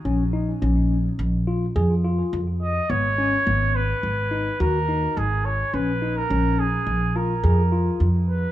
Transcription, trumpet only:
\new Staff \with { instrumentName = "Trumpet" } { \time 5/4 \key ais \phrygian \tempo 4 = 106 r1 r8 dis''8 | cis''4. b'4. ais'4 gis'8 cis''8 | b'8. ais'8. gis'4 ais'4. r8 b'8 | }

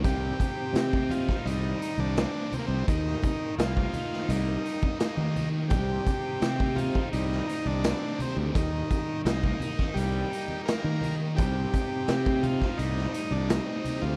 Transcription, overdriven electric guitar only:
\new Staff \with { instrumentName = "Overdriven electric guitar" } { \time 4/4 \key c \minor \tempo 4 = 85 c4 c'8 ees'8 g8 ees'8 c'8 c8 | ees4 bes8 ees'8 g8 ees'8 bes8 ees8 | c4 c'8 ees'8 g8 ees'8 c'8 c8 | ees4 bes8 ees'8 g8 ees'8 bes8 ees8 |
c4 c'8 ees'8 g8 ees'8 c'8 c8 | }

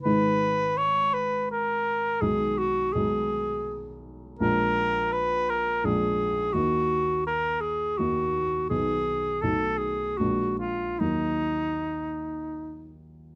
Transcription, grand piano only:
\new Staff \with { instrumentName = "Grand piano" } { \clef bass \time 3/4 \key ees \minor \tempo 4 = 82 <aes,, ees aes ees'>2. | <ces, ees aes ees'>4 <ces, ees aes ees'>2 | <bes,, f aes d'>2 <bes,, f aes d'>4 | <ees, ees bes ees'>2 <ees, ees bes ees'>4 |
<ces, ees ces' ees'>4 <b,, dis a dis'>4 <bes,, aes bes d'>4 | <ees, ges bes ees'>2. | }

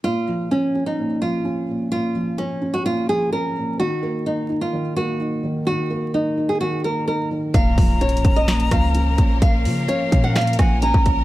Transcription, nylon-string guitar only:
\new Staff \with { instrumentName = "Nylon-string guitar" } { \time 4/4 \key bes \phrygian \tempo 4 = 128 f'4 des'8. ees'8. f'4. | f'4 des'8. ges'16 f'8 aes'8 bes'4 | ges'4 ees'8. f'8. ges'4. | ges'4 ees'8. aes'16 ges'8 bes'8 bes'8 r8 |
f''4 des''8. ees''8. f''4. | f''4 des''8. ges''16 f''8 aes''8 bes''4 | }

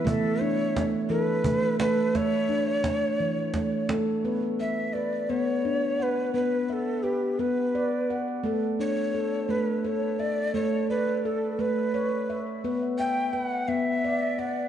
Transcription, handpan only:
<<
  \new Staff \with { instrumentName = "Handpan" } { \time 6/8 \key b \minor \tempo 4. = 57 << { e''8 d'4 a'4 a'8 | e''8 d'4. r8 a'8 | b'8 e''4. r8 fis''8 | b'8 e''4. r8 fis''8 |
a'8 d'4. r8 e''8 | a'8 d''4. r8 e''8 | b'8 e''4. r8 fis''8 | } \\ { r4 a4 a4 | a4 a4 a4 | b4 b'4 d'4 | r4 b'4 d''4 |
r4 a'4 a'4 | r4 a'4 cis''4 | r4 b'4 d''4 | } >> }
  \new Staff \with { instrumentName = "Handpan" } { \time 6/8 \key b \minor a4. e4 a8 | r4. e4 a8 | r4. b4. | b4. b4. |
a4. a4. | a4. a4. | b4. b4. | }
>>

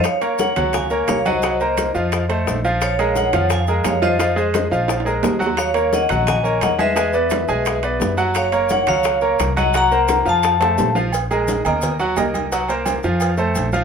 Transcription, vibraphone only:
\new Staff \with { instrumentName = "Vibraphone" } { \time 4/4 \key bes \minor \tempo 4 = 173 << { f''4 ges''4 aes''4 f''8 ees''8~ | ees''2.~ ees''8 r8 | f''4 ges''4 aes''4 f''8 ees''8~ | ees''2 r2 |
f''4 ges''4 aes''4 ges''8 e''8~ | e''2.~ e''8 r8 | f''4 ges''8 f''4. r8 ges''8 | bes''4. a''2 r8 |
r1 | r1 | } \\ { des''4 des''4 f''4 des''8 c''8~ | c''2.~ c''8 r8 | des''4 des''4 f''4 des''8 c''8~ | c''2.~ c''8 r8 |
des''4 ees''4 ees''4 ees''8 ces''8~ | ces''2.~ ces''8 r8 | des''4 des''8 des''4. r8 ees''8 | ges''4. f''2 r8 |
r1 | r1 | } >> }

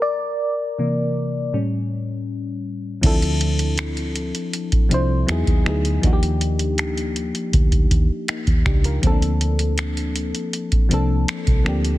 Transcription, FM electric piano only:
\new Staff \with { instrumentName = "FM electric piano" } { \time 4/4 \key a \phrygian \tempo 4 = 80 << { d''2 r2 | \key d \phrygian r1 | r2. <bes ees'>8 <d' g'>16 <f' bes'>16~ | <f' bes'>16 r2. r8. | } \\ { r4 <c e bes>8 r8 <a, g cis'>2 | <e f c' d' e' a'>4. r4 <f c' d' e' c''>8 <fis b dis' e' gis'>8 <fis b dis' e' gis'>8 | <f bes d' ees' fis' g'>4. r2 r8 | <f bes c' cis' d' a'>4. r4 <f bes c' d' a'>4 <f bes c' d' g'>8 | } >> }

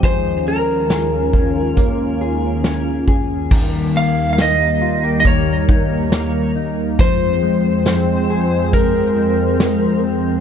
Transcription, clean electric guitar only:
\new Staff \with { instrumentName = "Clean electric guitar" } { \time 4/4 \key ees \mixolydian \tempo 4 = 69 <f aes'>8 des'8 aes'8 des'8 bes8 aes'8 des'8 aes'8 | ees8 bes8 ees'8 f'16 g'16 bes8 ees'8 bes8 ees'8 | f8 aes8 c'8 aes'8 aes8 c'8 aes8 c'8 | }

